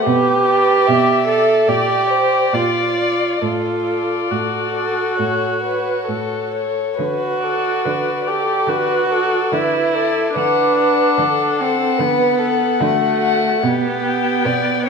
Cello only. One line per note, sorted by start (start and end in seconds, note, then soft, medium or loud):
0.07 0.76 B2 medium
0.89 1.58 B2 medium
1.68 2.40 A#2 soft
2.53 3.29 A#2 soft
3.42 4.18 A2 soft
4.31 5.07 A2 soft
5.19 5.96 A2 soft
6.09 6.86 A2 soft
6.99 7.72 D3 soft
7.86 8.56 D3 soft
8.67 9.39 D3 soft
9.52 10.24 D3 soft
10.36 11.07 D3 soft
11.19 11.88 D3 medium
12.00 12.68 D3 medium
12.81 13.51 D3 medium
13.64 14.34 B2 medium
14.46 14.89 B2 medium